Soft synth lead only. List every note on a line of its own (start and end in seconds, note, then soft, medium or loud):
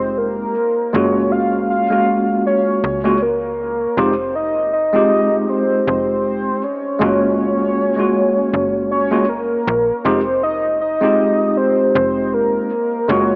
0.00 0.19 C5 medium
0.18 0.95 A#4 medium
0.94 1.33 C#5 loud
1.32 1.69 F5 medium
1.70 2.42 F5 loud
2.46 2.81 C#5 loud
2.84 3.24 C#5 medium
3.22 3.99 A#4 loud
3.97 4.37 C5 loud
4.36 4.73 D#5 medium
4.73 5.51 D#5 loud
5.49 5.87 C5 loud
5.88 6.65 C5 loud
6.64 8.91 C#5 loud
8.91 9.30 C#5 loud
9.29 10.06 A#4 loud
10.05 10.43 C5 loud
10.43 10.79 D#5 loud
10.81 11.59 D#5 loud
11.57 11.95 C5 loud
11.95 12.35 C5 loud
12.34 13.09 A#4 loud
13.09 13.36 C#5 loud